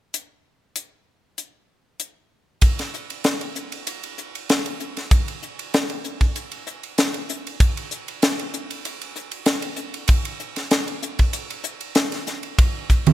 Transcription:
0.14 closed hi-hat soft
0.76 closed hi-hat soft
1.38 closed hi-hat soft
2.00 closed hi-hat soft
2.61 kick medium
2.61 hi-hat pedal medium
2.61 ride medium
2.79 snare soft
2.79 ride medium
2.94 hi-hat pedal medium
3.10 ride soft
3.24 snare medium
3.24 hi-hat pedal medium
3.24 ride medium
3.41 ride soft
3.56 hi-hat pedal medium
3.72 ride medium
3.87 hi-hat pedal medium
3.87 ride medium
4.03 ride soft
4.18 hi-hat pedal medium
4.35 ride soft
4.49 snare medium
4.49 hi-hat pedal medium
4.49 ride medium
4.66 ride soft
4.80 hi-hat pedal medium
4.97 snare soft
4.97 ride soft
5.11 kick loud
5.11 hi-hat pedal medium
5.11 ride medium
5.28 ride soft
5.43 hi-hat pedal medium
5.59 ride soft
5.74 snare loud
5.74 hi-hat pedal medium
5.74 ride medium
5.90 ride medium
6.04 hi-hat pedal medium
6.21 kick medium
6.21 ride medium
6.36 hi-hat pedal medium
6.36 ride medium
6.52 ride soft
6.67 hi-hat pedal medium
6.83 ride soft
6.98 snare medium
6.98 hi-hat pedal medium
6.98 ride medium
7.14 ride soft
7.29 hi-hat pedal medium
7.47 ride soft
7.60 kick loud
7.60 hi-hat pedal medium
7.60 ride medium
7.77 ride soft
7.91 hi-hat pedal medium
8.08 ride medium
8.22 snare loud
8.22 hi-hat pedal medium
8.22 ride medium
8.39 ride soft
8.54 hi-hat pedal medium
8.71 ride medium
8.85 hi-hat pedal medium
8.85 ride medium
9.01 ride medium
9.16 hi-hat pedal medium
9.31 ride medium
9.46 snare medium
9.46 hi-hat pedal medium
9.46 ride medium
9.62 ride medium
9.76 hi-hat pedal medium
9.94 ride soft
10.08 kick loud
10.08 hi-hat pedal medium
10.08 ride medium
10.25 ride medium
10.40 hi-hat pedal medium
10.56 snare soft
10.56 ride medium
10.71 snare medium
10.71 hi-hat pedal medium
10.71 ride medium
10.88 ride soft
11.03 hi-hat pedal medium
11.19 kick medium
11.19 ride medium
11.33 hi-hat pedal medium
11.33 ride medium
11.50 ride medium
11.64 hi-hat pedal medium
11.81 ride soft
11.95 snare loud
11.95 hi-hat pedal medium
11.95 ride medium
12.12 snare soft
12.12 ride medium
12.27 snare soft
12.27 hi-hat pedal medium
12.43 ride soft
12.59 kick loud
12.59 ride medium
12.90 kick medium
12.90 hi-hat pedal medium
12.90 ride soft
13.06 ride medium
13.06 high conga medium

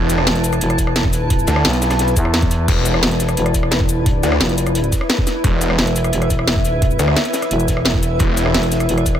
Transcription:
0.00 0.25 E1 loud
0.00 9.20 E4 medium
0.00 9.20 B4 medium
0.00 2.66 A5 medium
0.00 3.69 A5 medium
0.10 closed hi-hat medium
0.10 shaker medium
0.18 cross-stick medium
0.27 0.60 E1 medium
0.27 snare loud
0.27 closed hi-hat loud
0.27 closed hi-hat medium
0.35 closed hi-hat soft
0.44 closed hi-hat medium
0.44 shaker medium
0.53 cross-stick soft
0.53 closed hi-hat soft
0.53 shaker soft
0.61 1.46 E1 loud
0.61 closed hi-hat medium
0.61 closed hi-hat loud
0.70 cross-stick soft
0.70 closed hi-hat soft
0.78 kick medium
0.78 closed hi-hat medium
0.78 shaker medium
0.87 cross-stick soft
0.96 snare loud
0.96 closed hi-hat medium
0.96 closed hi-hat loud
1.04 kick loud
1.04 snare medium
1.13 closed hi-hat medium
1.13 shaker medium
1.30 kick loud
1.30 closed hi-hat loud
1.30 closed hi-hat medium
1.39 shaker soft
1.47 1.63 D2 loud
1.47 closed hi-hat medium
1.47 shaker medium
1.56 cross-stick medium
1.65 2.15 B1 medium
1.65 snare loud
1.65 closed hi-hat loud
1.65 closed hi-hat medium
1.73 closed hi-hat soft
1.73 closed hi-hat medium
1.82 snare loud
1.82 closed hi-hat medium
1.82 shaker medium
1.90 cross-stick soft
1.90 snare loud
1.90 closed hi-hat medium
1.90 closed hi-hat soft
1.90 shaker soft
1.99 snare loud
1.99 closed hi-hat loud
1.99 closed hi-hat medium
2.08 closed hi-hat soft
2.08 shaker soft
2.16 2.67 E2 loud
2.16 kick medium
2.16 closed hi-hat medium
2.16 shaker medium
2.25 cross-stick soft
2.33 snare loud
2.33 closed hi-hat medium
2.33 closed hi-hat loud
2.42 kick loud
2.42 snare medium
2.42 closed hi-hat soft
2.51 closed hi-hat medium
2.51 shaker medium
2.68 3.01 E1 loud
2.68 5.43 D5 medium
2.68 kick loud
2.68 closed hi-hat loud
2.68 closed hi-hat medium
2.68 crash medium
2.85 closed hi-hat medium
2.85 shaker medium
2.94 cross-stick medium
3.03 3.36 E1 loud
3.03 snare loud
3.03 closed hi-hat loud
3.03 closed hi-hat medium
3.11 closed hi-hat soft
3.20 snare medium
3.20 closed hi-hat medium
3.20 shaker medium
3.29 cross-stick soft
3.29 closed hi-hat soft
3.29 shaker soft
3.37 3.97 E1 loud
3.37 closed hi-hat medium
3.37 closed hi-hat loud
3.46 cross-stick soft
3.46 closed hi-hat soft
3.54 kick medium
3.54 closed hi-hat medium
3.54 shaker medium
3.63 9.20 E5 medium
3.63 cross-stick soft
3.71 snare loud
3.71 closed hi-hat medium
3.71 closed hi-hat loud
3.80 kick loud
3.80 snare soft
3.89 closed hi-hat medium
3.89 shaker medium
3.97 4.22 D#1 loud
4.06 kick loud
4.06 closed hi-hat medium
4.23 4.39 D2 loud
4.23 closed hi-hat medium
4.23 shaker medium
4.32 cross-stick medium
4.41 4.91 F1 loud
4.41 snare loud
4.41 closed hi-hat medium
4.49 closed hi-hat soft
4.58 closed hi-hat medium
4.58 shaker medium
4.67 cross-stick soft
4.67 closed hi-hat soft
4.67 shaker soft
4.75 closed hi-hat loud
4.84 closed hi-hat soft
4.92 kick medium
4.92 snare soft
4.92 closed hi-hat medium
4.92 shaker medium
5.01 cross-stick soft
5.09 snare loud
5.09 closed hi-hat medium
5.09 closed hi-hat loud
5.18 kick loud
5.18 snare medium
5.27 snare soft
5.27 closed hi-hat medium
5.27 shaker medium
5.44 5.77 E1 loud
5.44 8.19 E5 medium
5.44 kick loud
5.44 closed hi-hat medium
5.61 closed hi-hat medium
5.61 shaker medium
5.70 cross-stick medium
5.78 6.12 E1 loud
5.78 snare loud
5.78 closed hi-hat medium
5.87 closed hi-hat soft
5.96 closed hi-hat medium
5.96 shaker medium
6.04 cross-stick soft
6.04 closed hi-hat soft
6.04 shaker soft
6.13 6.98 E1 loud
6.13 closed hi-hat medium
6.13 closed hi-hat loud
6.22 cross-stick soft
6.22 closed hi-hat soft
6.30 kick medium
6.30 closed hi-hat medium
6.30 shaker medium
6.39 cross-stick soft
6.47 snare loud
6.47 closed hi-hat medium
6.47 closed hi-hat loud
6.56 kick loud
6.56 snare soft
6.65 closed hi-hat medium
6.65 shaker medium
6.82 kick loud
6.82 closed hi-hat medium
6.91 shaker soft
6.99 7.15 D2 loud
6.99 closed hi-hat medium
6.99 shaker medium
7.08 cross-stick medium
7.16 snare loud
7.16 closed hi-hat medium
7.25 closed hi-hat soft
7.33 snare loud
7.33 closed hi-hat medium
7.33 shaker medium
7.42 cross-stick soft
7.42 closed hi-hat soft
7.42 shaker soft
7.51 8.19 E1 loud
7.51 closed hi-hat loud
7.51 closed hi-hat medium
7.60 closed hi-hat soft
7.60 shaker soft
7.68 kick medium
7.68 snare soft
7.68 closed hi-hat medium
7.68 shaker medium
7.77 cross-stick soft
7.85 snare loud
7.85 closed hi-hat medium
7.94 kick loud
7.94 snare medium
8.02 closed hi-hat medium
8.02 shaker medium
8.19 8.53 E1 loud
8.19 9.20 D5 medium
8.19 kick loud
8.19 closed hi-hat medium
8.37 closed hi-hat medium
8.37 shaker medium
8.46 cross-stick medium
8.54 8.88 E1 loud
8.54 snare loud
8.54 closed hi-hat medium
8.63 closed hi-hat soft
8.71 snare medium
8.71 closed hi-hat medium
8.71 shaker medium
8.80 cross-stick soft
8.80 closed hi-hat soft
8.80 shaker soft
8.89 9.20 E1 loud
8.89 closed hi-hat medium
8.98 cross-stick soft
8.98 closed hi-hat soft
9.06 kick medium
9.06 closed hi-hat medium
9.06 shaker medium
9.15 cross-stick soft

